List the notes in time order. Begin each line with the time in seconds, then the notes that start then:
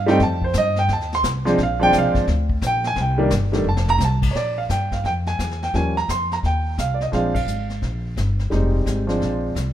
Already playing: G2
0.06 G3 A3 C4 D#4, snare
0.10 G5
0.20 F2 A5, brush sweep, kick, snare
0.42 C5, kick
0.54 G2, kick, snare, hi-hat pedal
0.58 D#5
0.76 G5, snare
0.88 D#2, brush sweep, kick, snare
0.93 A5
1.00 snare
1.12 C6, snare
1.23 C2, kick, snare, hi-hat pedal
1.45 F3 G#3 C4 D4, snare
1.58 A#1, brush sweep, kick, snare
1.63 F5
1.80 F3 G#3 C4 D4 G5
1.92 C2, kick, snare, hi-hat pedal
1.98 F5
2.03 A#1
2.15 G#1, kick, snare
2.27 D2, brush sweep, kick, snare
2.49 kick
2.62 A#1, kick, snare, hi-hat pedal
2.67 G5
2.84 G#5, snare
2.96 C2, brush sweep, kick, snare
3.01 G5
3.18 D#3 G3 A#3 D4
3.30 G1, kick, snare, hi-hat pedal
3.52 D#3 G3 A3 D4, snare
3.64 F1
3.69 A5
3.77 snare
3.88 A#5, floor tom
3.99 C2, snare, hi-hat pedal
4.05 A5
4.22 kick, crash
4.31 A#1 C#5, kick
4.35 D5, brush sweep, snare
4.58 F5
4.69 G2 G5, kick, snare, hi-hat pedal
4.92 F5, kick, snare
5.04 F2 G5, brush sweep, kick, snare
5.26 G#5, snare
5.39 E2, kick, snare, hi-hat pedal
5.51 snare
5.62 G5, snare
5.74 D#2 F3 G3 A#3 C#4 G#5, brush sweep, kick, snare
5.97 A#5, snare
6.08 F2 C6, kick, snare, hi-hat pedal
6.31 A#5, snare
6.43 D#2 G5, brush sweep, kick, snare
6.78 C2 F5, kick, snare, hi-hat pedal
6.94 D5
7.01 D#5, snare
7.12 A#1 F3 G#3 C4 D4 F5, brush sweep, kick, snare
7.35 F5, kick, ride
7.46 G#1, hi-hat pedal
7.70 snare
7.82 A#1, brush sweep, kick, snare
8.17 G1, kick, snare, hi-hat pedal
8.39 snare
8.50 F1 G3 G#3 C4 D#4, brush sweep, kick, snare
8.86 G#1, kick, snare, hi-hat pedal
9.07 F3 G#3 C4 D4, snare
9.20 A#1, brush sweep, kick, snare
9.55 C2, kick, snare, hi-hat pedal